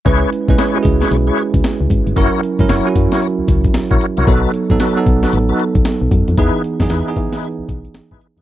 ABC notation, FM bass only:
X:1
M:4/4
L:1/16
Q:"Swing 16ths" 1/4=114
K:C#m
V:1 name="FM bass" clef=bass
C,,2 z B,,, z2 C,,2 B,,,2 z C,, z C,, G,,, =G,,, | F,,, z2 G,,, F,,, z F,, z2 C,, C,,2 ^A,,, A,,, z ^B,,, | B,,,2 z A,,, z2 B,,,2 A,,,2 z B,,, z B,,, F,, ^E,, | E,, z2 F,, E,, z E, z2 B,,, B,,,2 G,,, G,,, z ^E,, |]